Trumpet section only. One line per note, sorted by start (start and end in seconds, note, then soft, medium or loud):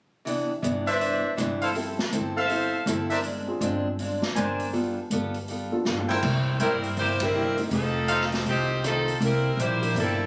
0.87 1.35 D4 medium
0.87 1.35 B4 medium
0.87 1.36 C5 medium
0.87 1.36 E5 medium
1.62 1.71 E4 medium
1.62 1.71 A4 medium
1.62 1.71 C5 medium
1.62 1.71 F5 medium
2.36 2.85 A4 medium
2.36 2.85 C5 medium
2.36 2.85 E5 medium
2.36 2.85 F5 medium
3.11 3.20 D4 medium
3.11 3.20 A#4 medium
3.11 3.20 C5 medium
3.11 3.20 E5 medium
4.36 4.74 D4 medium
4.36 4.74 A#4 medium
4.36 4.73 C5 medium
4.36 4.73 G#5 medium
6.09 6.57 E4 medium
6.09 6.57 A#4 medium
6.09 6.57 C5 medium
6.09 6.57 G5 medium
6.60 6.76 E4 medium
6.60 6.76 A#4 medium
6.60 6.76 C5 medium
6.60 6.76 G5 medium
8.09 8.25 D#4 medium
8.09 8.25 A4 medium
8.09 8.25 C5 medium
8.09 8.25 F5 medium